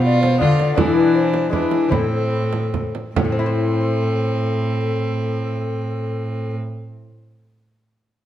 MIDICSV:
0, 0, Header, 1, 6, 480
1, 0, Start_track
1, 0, Key_signature, 0, "minor"
1, 0, Tempo, 370142
1, 1015, Time_signature, 3, 2, 24, 8
1, 1989, Tempo, 404313
1, 3429, Tempo, 436047
1, 9489, End_track
2, 0, Start_track
2, 0, Title_t, "Recorder"
2, 0, Program_c, 0, 74
2, 77, Note_on_c, 0, 74, 106
2, 288, Note_off_c, 0, 74, 0
2, 296, Note_on_c, 0, 72, 103
2, 517, Note_off_c, 0, 72, 0
2, 525, Note_on_c, 0, 74, 106
2, 1005, Note_on_c, 0, 69, 97
2, 1024, Note_off_c, 0, 74, 0
2, 1238, Note_off_c, 0, 69, 0
2, 1246, Note_on_c, 0, 71, 102
2, 1483, Note_off_c, 0, 71, 0
2, 1490, Note_on_c, 0, 72, 105
2, 1975, Note_on_c, 0, 71, 84
2, 1994, Note_off_c, 0, 72, 0
2, 2434, Note_off_c, 0, 71, 0
2, 2441, Note_on_c, 0, 69, 96
2, 3635, Note_off_c, 0, 69, 0
2, 3888, Note_on_c, 0, 69, 87
2, 7614, Note_off_c, 0, 69, 0
2, 9489, End_track
3, 0, Start_track
3, 0, Title_t, "Violin"
3, 0, Program_c, 1, 40
3, 54, Note_on_c, 1, 65, 83
3, 523, Note_off_c, 1, 65, 0
3, 534, Note_on_c, 1, 65, 78
3, 1003, Note_off_c, 1, 65, 0
3, 1008, Note_on_c, 1, 62, 74
3, 1966, Note_off_c, 1, 62, 0
3, 1981, Note_on_c, 1, 62, 66
3, 2442, Note_on_c, 1, 60, 72
3, 2460, Note_off_c, 1, 62, 0
3, 3659, Note_off_c, 1, 60, 0
3, 3893, Note_on_c, 1, 60, 75
3, 7616, Note_off_c, 1, 60, 0
3, 9489, End_track
4, 0, Start_track
4, 0, Title_t, "Lute"
4, 0, Program_c, 2, 24
4, 0, Note_on_c, 2, 47, 69
4, 0, Note_on_c, 2, 59, 65
4, 0, Note_on_c, 2, 62, 60
4, 0, Note_on_c, 2, 65, 62
4, 478, Note_off_c, 2, 59, 0
4, 494, Note_off_c, 2, 62, 0
4, 494, Note_on_c, 2, 59, 58
4, 498, Note_off_c, 2, 47, 0
4, 510, Note_off_c, 2, 65, 0
4, 510, Note_on_c, 2, 62, 57
4, 526, Note_on_c, 2, 65, 60
4, 541, Note_on_c, 2, 50, 74
4, 964, Note_off_c, 2, 50, 0
4, 969, Note_on_c, 2, 47, 61
4, 972, Note_off_c, 2, 62, 0
4, 977, Note_off_c, 2, 59, 0
4, 988, Note_on_c, 2, 62, 65
4, 994, Note_off_c, 2, 65, 0
4, 1000, Note_on_c, 2, 64, 61
4, 1017, Note_on_c, 2, 52, 72
4, 1937, Note_off_c, 2, 47, 0
4, 1937, Note_on_c, 2, 56, 51
4, 1939, Note_off_c, 2, 52, 0
4, 1946, Note_off_c, 2, 62, 0
4, 1953, Note_off_c, 2, 64, 0
4, 1961, Note_on_c, 2, 62, 55
4, 1978, Note_on_c, 2, 64, 53
4, 1990, Note_on_c, 2, 52, 53
4, 2401, Note_off_c, 2, 56, 0
4, 2405, Note_on_c, 2, 57, 53
4, 2409, Note_off_c, 2, 52, 0
4, 2411, Note_off_c, 2, 62, 0
4, 2415, Note_on_c, 2, 60, 54
4, 2420, Note_off_c, 2, 64, 0
4, 2434, Note_on_c, 2, 64, 55
4, 2449, Note_on_c, 2, 45, 57
4, 3618, Note_off_c, 2, 45, 0
4, 3839, Note_off_c, 2, 57, 0
4, 3844, Note_off_c, 2, 60, 0
4, 3852, Note_off_c, 2, 64, 0
4, 3904, Note_on_c, 2, 45, 67
4, 3980, Note_on_c, 2, 57, 55
4, 4062, Note_on_c, 2, 60, 61
4, 4137, Note_on_c, 2, 64, 67
4, 4214, Note_on_c, 2, 72, 64
4, 8217, Note_off_c, 2, 45, 0
4, 8293, Note_off_c, 2, 57, 0
4, 8374, Note_off_c, 2, 60, 0
4, 8450, Note_off_c, 2, 64, 0
4, 8527, Note_off_c, 2, 72, 0
4, 9489, End_track
5, 0, Start_track
5, 0, Title_t, "Cello"
5, 0, Program_c, 3, 42
5, 0, Note_on_c, 3, 47, 86
5, 533, Note_on_c, 3, 50, 77
5, 553, Note_off_c, 3, 47, 0
5, 1016, Note_on_c, 3, 52, 78
5, 1035, Note_off_c, 3, 50, 0
5, 1980, Note_off_c, 3, 52, 0
5, 1988, Note_on_c, 3, 52, 69
5, 2456, Note_on_c, 3, 45, 69
5, 2473, Note_off_c, 3, 52, 0
5, 3665, Note_off_c, 3, 45, 0
5, 3892, Note_on_c, 3, 45, 72
5, 7616, Note_off_c, 3, 45, 0
5, 9489, End_track
6, 0, Start_track
6, 0, Title_t, "Frame drum"
6, 298, Note_on_c, 9, 64, 58
6, 428, Note_off_c, 9, 64, 0
6, 537, Note_on_c, 9, 64, 48
6, 667, Note_off_c, 9, 64, 0
6, 773, Note_on_c, 9, 64, 53
6, 902, Note_off_c, 9, 64, 0
6, 1006, Note_on_c, 9, 64, 88
6, 1135, Note_off_c, 9, 64, 0
6, 1733, Note_on_c, 9, 64, 54
6, 1863, Note_off_c, 9, 64, 0
6, 1982, Note_on_c, 9, 64, 53
6, 2101, Note_off_c, 9, 64, 0
6, 2202, Note_on_c, 9, 64, 55
6, 2321, Note_off_c, 9, 64, 0
6, 2445, Note_on_c, 9, 64, 75
6, 2564, Note_off_c, 9, 64, 0
6, 3167, Note_on_c, 9, 64, 53
6, 3286, Note_off_c, 9, 64, 0
6, 3419, Note_on_c, 9, 64, 53
6, 3530, Note_off_c, 9, 64, 0
6, 3651, Note_on_c, 9, 64, 50
6, 3761, Note_off_c, 9, 64, 0
6, 3888, Note_on_c, 9, 64, 85
6, 3998, Note_off_c, 9, 64, 0
6, 9489, End_track
0, 0, End_of_file